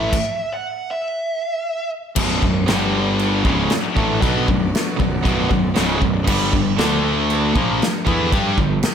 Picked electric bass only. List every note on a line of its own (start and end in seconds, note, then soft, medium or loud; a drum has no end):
0.00 0.11 A1 medium
2.17 2.41 B0 medium
2.42 2.66 B0 medium
2.70 3.42 G1 loud
3.45 3.69 C#1 medium
3.72 muted picked electric bass stroke soft
3.97 4.21 A1 medium
4.22 4.46 B1 loud
4.48 4.72 B0 medium
5.00 5.23 B0 medium
5.25 5.49 B0 loud
5.51 5.74 B0 medium
5.77 6.00 C#1 medium
6.02 6.26 B0 medium
6.27 6.51 G1 loud
6.53 6.77 G1 medium
6.79 7.51 D2 loud
7.56 7.79 A#1 loud
7.82 muted picked electric bass stroke soft
8.07 8.30 E2 loud
8.33 8.56 G2 medium
8.59 8.82 G1 medium